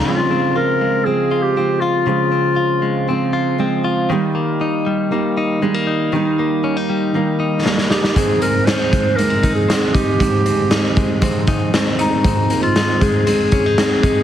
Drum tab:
HH |----------------|----------------|----------------|----------------|
SD |----------------|----------------|----------------|------------oooo|
BD |----------------|----------------|----------------|----------------|

HH |x-x-x-x-x-x-x-x-|x-x-x-x-x-x-x-x-|x-x-x-x-x-x-x-x-|
SD |----o-------o---|----o-------o---|----o-------o---|
BD |o-----o---o---o-|o-----o-o-o-----|o-----o---o---o-|